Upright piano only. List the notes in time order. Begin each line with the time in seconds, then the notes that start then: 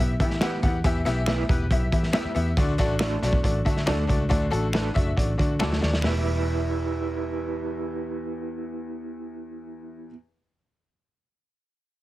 Already playing: B3
0.00 E4 G4 E5
0.20 B3 E4 G4 E5
0.41 B3 E4 G4 F#5
0.62 B3 E4 G4 F#5
0.84 E3 B3 E4 G4 E5
1.05 B3 E4 G4 E5
1.27 B3 E4 G4 E5
1.49 B3 E4 G4 B4
1.71 B3 E4 G4 E5
1.92 B3 E4 G4 E5
2.13 B3 E4 G4 E5
2.35 B3 E4 G4 E5
2.57 D3 A3 D4 F#4 D5
2.78 A3 D4 F#4 D5
3.01 A3 D4 F#4 D5
3.22 A3 D4 F#4 D5
3.43 A3 D4 F#4 D5
3.65 A3 D4 F#4 E5
3.86 A3 D4 F#4 D5
4.07 A3 D4 F#4 D5
4.29 D3 A3 D4 F#4 D5
4.50 A3 D4 F#4 A4
4.72 A3 D4 F#4 B4
4.94 A3 D4 F#4 E5
5.16 A3 D4 F#4 D5
5.37 A3 D4 F#4 D5
5.59 A3 D4 F#4 A4
5.81 A3 D4 F#4 D5
6.01 E2 B3 E4 G4
6.06 E5